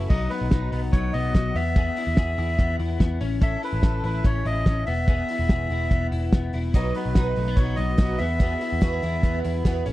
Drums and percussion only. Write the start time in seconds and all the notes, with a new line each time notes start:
0.10 kick, crash
0.31 open hi-hat
0.51 kick, snare, hi-hat pedal, ride
0.73 open hi-hat
0.93 kick, hi-hat pedal, ride
1.14 open hi-hat
1.35 kick, snare, hi-hat pedal, ride
1.56 open hi-hat
1.76 kick, hi-hat pedal, ride
1.97 open hi-hat
2.17 kick, snare, hi-hat pedal, ride
2.38 open hi-hat
2.59 kick, hi-hat pedal, ride
2.79 open hi-hat
3.00 kick, snare, hi-hat pedal, ride
3.21 open hi-hat
3.42 kick, hi-hat pedal, ride
3.63 open hi-hat
3.83 kick, snare, hi-hat pedal, ride
4.04 open hi-hat
4.24 kick, hi-hat pedal, ride
4.46 open hi-hat
4.66 kick, snare, hi-hat pedal, ride
4.87 open hi-hat
5.08 kick, hi-hat pedal, ride
5.29 open hi-hat
5.49 kick, snare, hi-hat pedal, ride
5.70 open hi-hat
5.91 kick, hi-hat pedal, ride
6.12 open hi-hat
6.32 kick, snare, hi-hat pedal, ride
6.53 open hi-hat
6.74 kick, hi-hat pedal, ride
6.95 open hi-hat
7.15 kick, snare, hi-hat pedal, ride
7.36 open hi-hat
7.57 kick, hi-hat pedal, ride
7.77 open hi-hat
7.98 kick, snare, hi-hat pedal, ride
8.19 open hi-hat
8.40 kick, hi-hat pedal, ride
8.61 open hi-hat
8.82 kick, snare, hi-hat pedal, ride
9.03 open hi-hat
9.23 kick, hi-hat pedal, ride
9.44 open hi-hat
9.65 kick, snare, hi-hat pedal, ride
9.86 open hi-hat